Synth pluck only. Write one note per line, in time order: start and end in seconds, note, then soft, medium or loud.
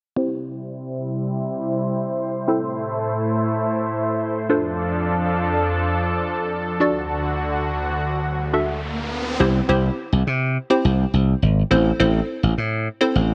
0.17 2.44 C4 medium
0.17 2.44 E4 medium
0.17 2.44 G4 medium
0.17 2.44 C5 medium
2.48 4.46 C4 medium
2.48 4.46 E4 medium
2.48 4.46 A4 medium
2.48 4.46 C5 medium
4.49 6.76 D4 medium
4.49 6.77 F4 medium
4.49 6.77 A4 medium
4.49 6.77 C5 medium
6.80 8.50 D4 medium
6.80 8.50 F#4 medium
6.80 8.50 A4 medium
6.80 8.51 D5 medium
8.53 9.40 D4 medium
8.53 9.40 F#4 medium
8.53 9.40 A4 medium
8.53 9.40 E5 medium
9.40 9.57 C4 medium
9.40 9.57 E4 medium
9.40 9.57 G4 medium
9.40 9.58 C5 loud
9.69 10.29 C4 loud
9.69 10.29 E4 medium
9.69 10.29 G4 medium
9.69 10.29 C5 loud
10.70 11.30 C4 loud
10.70 11.30 E4 medium
10.70 11.30 G4 medium
10.70 11.30 C5 loud
11.71 11.88 C4 medium
11.71 11.88 E4 medium
11.71 11.88 A4 medium
11.71 11.88 C5 loud
12.00 12.60 C4 loud
12.00 12.60 E4 medium
12.00 12.60 A4 medium
12.00 12.60 C5 loud
13.01 13.34 C4 medium
13.01 13.34 E4 medium
13.01 13.34 A4 medium
13.01 13.34 C5 loud